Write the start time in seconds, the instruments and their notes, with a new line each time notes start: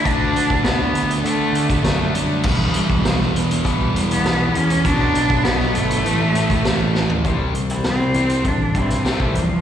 0.03 picked electric bass D2, distorted electric guitar D3 A3 D4, cello D4, kick, closed hi-hat
0.36 picked electric bass D2, closed hi-hat
0.50 kick
0.64 picked electric bass D2, cello B3, snare, closed hi-hat
0.94 picked electric bass D2, closed hi-hat
1.10 closed hi-hat
1.24 picked electric bass D3, distorted electric guitar D3 A3 D4, cello A3, closed hi-hat
1.53 picked electric bass D3, closed hi-hat
1.70 kick, closed hi-hat
1.83 picked electric bass F#2, cello A3, snare, closed hi-hat
2.14 distorted electric guitar D3 A3 D4, cello G3, closed hi-hat
2.43 picked electric bass E1, distorted electric guitar E2 B2 E3, kick, crash
2.73 picked electric bass E1, closed hi-hat
2.90 kick
3.04 picked electric bass B1, snare, closed hi-hat
3.20 snare
3.33 picked electric bass E1, closed hi-hat
3.51 closed hi-hat
3.63 picked electric bass B1, distorted electric guitar E2 B2 E3, kick, closed hi-hat
3.68 cello G3
3.94 picked electric bass E1, closed hi-hat
4.11 cello B3, closed hi-hat
4.23 picked electric bass B1, snare, closed hi-hat
4.54 picked electric bass E2, distorted electric guitar E2 B2 E3, cello C#4, closed hi-hat
4.70 closed hi-hat
4.85 picked electric bass B1, distorted electric guitar B2 F#3 B3, cello D4, kick, closed hi-hat
5.14 picked electric bass B1, closed hi-hat
5.30 kick
5.43 picked electric bass B1, cello B3, snare, closed hi-hat
5.60 snare
5.73 picked electric bass G1, cello A3, closed hi-hat
5.90 closed hi-hat
6.04 picked electric bass A1, distorted electric guitar A2 E3 A3, closed hi-hat
6.35 picked electric bass A2, closed hi-hat
6.50 kick, closed hi-hat
6.65 picked electric bass A1, snare, closed hi-hat
6.95 snare
7.10 floor tom
7.24 picked electric bass C2, distorted electric guitar C3 G3 C4, clean electric guitar E3 G3 C4 E4, kick, closed hi-hat
7.54 picked electric bass C2, distorted electric guitar C3 G3, closed hi-hat
7.70 clean electric guitar E3 G3 C4 E4, closed hi-hat
7.84 picked electric bass C2, distorted electric guitar C3 G3, cello C4, snare, closed hi-hat
8.00 clean electric guitar E3 G3 C4 E4
8.14 picked electric bass C2, distorted electric guitar C3 G3 C4, closed hi-hat
8.29 muted clean electric guitar stroke, closed hi-hat
8.44 picked electric bass A1, distorted electric guitar C3 G3, cello D4, kick, closed hi-hat
8.75 picked electric bass G2, distorted electric guitar C3 G3, clean electric guitar E3 G3 C4 E4, cello C4, kick, closed hi-hat
8.90 snare, closed hi-hat
9.05 picked electric bass C2, distorted electric guitar C3 G3 C4, snare, closed hi-hat
9.09 cello A3
9.20 clean electric guitar E3 G3 C4 E4, kick
9.35 picked electric bass E2, distorted electric guitar C3 G3, cello F3, closed hi-hat